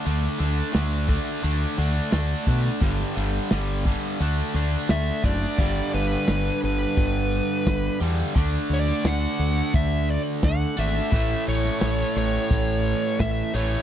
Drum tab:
CC |----------------|----------------|x---------------|----------------|
HH |x---x---x---x---|x---x---x---x---|--x-x-x-x-x-x-x-|x-x-x-x-x-x-x-x-|
SD |-oo-o-------o---|-oo-o-------o---|----o-------o---|---oo-------o---|
BD |------o-------o-|o-----o-------o-|o-------o---o---|o-------o---o---|

CC |----------------|
HH |x-x-x-x-x-x-x-x-|
SD |---oo-------o---|
BD |o-------o---o---|